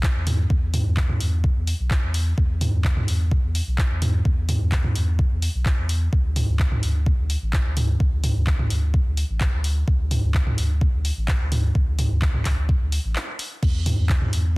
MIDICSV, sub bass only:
0, 0, Header, 1, 2, 480
1, 0, Start_track
1, 0, Tempo, 468750
1, 514, Time_signature, 4, 2, 24, 8
1, 14928, End_track
2, 0, Start_track
2, 0, Title_t, "Sub bass"
2, 0, Program_c, 0, 38
2, 158, Note_on_c, 0, 40, 84
2, 468, Note_off_c, 0, 40, 0
2, 513, Note_on_c, 0, 40, 95
2, 829, Note_off_c, 0, 40, 0
2, 877, Note_on_c, 0, 40, 98
2, 1188, Note_off_c, 0, 40, 0
2, 1233, Note_on_c, 0, 40, 78
2, 1549, Note_off_c, 0, 40, 0
2, 1597, Note_on_c, 0, 40, 96
2, 1777, Note_off_c, 0, 40, 0
2, 1838, Note_on_c, 0, 35, 99
2, 2018, Note_off_c, 0, 35, 0
2, 2078, Note_on_c, 0, 40, 83
2, 2388, Note_off_c, 0, 40, 0
2, 2434, Note_on_c, 0, 40, 96
2, 2750, Note_off_c, 0, 40, 0
2, 2798, Note_on_c, 0, 40, 97
2, 3109, Note_off_c, 0, 40, 0
2, 3153, Note_on_c, 0, 40, 80
2, 3469, Note_off_c, 0, 40, 0
2, 3518, Note_on_c, 0, 40, 96
2, 3697, Note_off_c, 0, 40, 0
2, 3758, Note_on_c, 0, 35, 99
2, 3938, Note_off_c, 0, 35, 0
2, 3998, Note_on_c, 0, 40, 83
2, 4309, Note_off_c, 0, 40, 0
2, 4354, Note_on_c, 0, 40, 94
2, 4670, Note_off_c, 0, 40, 0
2, 4718, Note_on_c, 0, 40, 92
2, 5028, Note_off_c, 0, 40, 0
2, 5073, Note_on_c, 0, 40, 79
2, 5390, Note_off_c, 0, 40, 0
2, 5438, Note_on_c, 0, 40, 99
2, 5617, Note_off_c, 0, 40, 0
2, 5678, Note_on_c, 0, 35, 100
2, 5857, Note_off_c, 0, 35, 0
2, 5918, Note_on_c, 0, 40, 86
2, 6229, Note_off_c, 0, 40, 0
2, 6274, Note_on_c, 0, 38, 101
2, 6590, Note_off_c, 0, 38, 0
2, 6638, Note_on_c, 0, 38, 95
2, 6949, Note_off_c, 0, 38, 0
2, 6993, Note_on_c, 0, 38, 80
2, 7309, Note_off_c, 0, 38, 0
2, 7358, Note_on_c, 0, 38, 95
2, 7537, Note_off_c, 0, 38, 0
2, 7598, Note_on_c, 0, 33, 99
2, 7777, Note_off_c, 0, 33, 0
2, 7838, Note_on_c, 0, 38, 82
2, 8148, Note_off_c, 0, 38, 0
2, 8193, Note_on_c, 0, 38, 99
2, 8510, Note_off_c, 0, 38, 0
2, 8558, Note_on_c, 0, 38, 98
2, 8869, Note_off_c, 0, 38, 0
2, 8914, Note_on_c, 0, 38, 77
2, 9230, Note_off_c, 0, 38, 0
2, 9278, Note_on_c, 0, 38, 100
2, 9458, Note_off_c, 0, 38, 0
2, 9518, Note_on_c, 0, 33, 99
2, 9697, Note_off_c, 0, 33, 0
2, 9758, Note_on_c, 0, 38, 83
2, 10069, Note_off_c, 0, 38, 0
2, 10113, Note_on_c, 0, 38, 96
2, 10429, Note_off_c, 0, 38, 0
2, 10478, Note_on_c, 0, 38, 98
2, 10788, Note_off_c, 0, 38, 0
2, 10834, Note_on_c, 0, 38, 81
2, 11150, Note_off_c, 0, 38, 0
2, 11197, Note_on_c, 0, 38, 94
2, 11377, Note_off_c, 0, 38, 0
2, 11438, Note_on_c, 0, 33, 95
2, 11617, Note_off_c, 0, 33, 0
2, 11678, Note_on_c, 0, 38, 83
2, 11988, Note_off_c, 0, 38, 0
2, 12033, Note_on_c, 0, 38, 100
2, 12349, Note_off_c, 0, 38, 0
2, 12398, Note_on_c, 0, 38, 96
2, 12708, Note_off_c, 0, 38, 0
2, 12753, Note_on_c, 0, 38, 78
2, 13070, Note_off_c, 0, 38, 0
2, 13118, Note_on_c, 0, 38, 95
2, 13297, Note_off_c, 0, 38, 0
2, 13357, Note_on_c, 0, 33, 95
2, 13473, Note_off_c, 0, 33, 0
2, 13953, Note_on_c, 0, 40, 102
2, 14269, Note_off_c, 0, 40, 0
2, 14318, Note_on_c, 0, 40, 100
2, 14629, Note_off_c, 0, 40, 0
2, 14673, Note_on_c, 0, 40, 80
2, 14928, Note_off_c, 0, 40, 0
2, 14928, End_track
0, 0, End_of_file